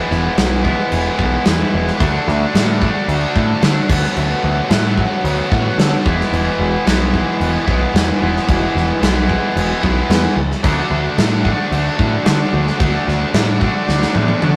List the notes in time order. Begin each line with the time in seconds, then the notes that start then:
Already playing: E3 G#3 B3 E4
0.11 E1, snare
0.37 B1, snare, crash
0.64 E3 G#3 B3 E4, kick
0.92 E1, crash
1.19 B1, kick
1.45 E2 E3 G#3 B3 E4, snare, crash
1.73 E1
1.88 snare
1.99 D2 D3 A3 D4 F#4, kick, crash
2.28 D2, snare
2.54 A2, snare, crash
2.80 A3 D4 F#4, kick
2.84 D3
3.08 D2, crash
3.36 A2, kick
3.61 D3 A3 D4 F#4, snare, crash
3.88 D2 D3 F#3 B3 F#4, kick, crash
4.03 snare
4.16 D2, crash
4.44 D2
4.69 A2 D3 F#3 B3 F#4, snare, crash
4.97 kick
5.24 D2, crash
5.50 A2 F#3 B3 F#4, kick
5.54 D3
5.78 D3, snare, crash
6.04 E1 E3 G#3 B3, kick
6.08 E4
6.21 snare
6.32 E1, crash
6.59 E1
6.85 B1 E3 G#3 B3, snare, crash
6.89 E4
7.14 kick
7.40 E1, crash
7.66 B1 E3 G#3 B3 E4, kick
7.94 E2, snare, crash
8.19 E1 E3 G#3 B3
8.23 E4
8.36 snare
8.49 E1, kick, crash
8.75 E1, snare
9.01 B1 E3 G#3 B3 E4, snare, crash
9.29 kick
9.56 E1, crash
9.82 B1 E3 G#3 B3 E4, kick
10.09 E2, snare, crash
10.36 C#2
10.51 snare
10.63 D2 D3 A3 D4 F#4, kick, crash
10.91 D2
11.18 A2, snare, crash
11.44 D3 A3 D4 F#4, kick
11.72 D2, crash
11.99 A2, kick
12.25 D3 A3 D4 F#4, snare, crash
12.53 D2
12.67 snare
12.79 D2 D3 A3 D4 F#4, kick, crash
13.07 D2, snare
13.34 A2, snare, crash
13.60 D3 A3 D4 F#4, kick
13.88 D2, snare
14.02 snare
14.15 A2, high tom
14.28 high tom
14.40 D3 A3 D4 F#4, mid tom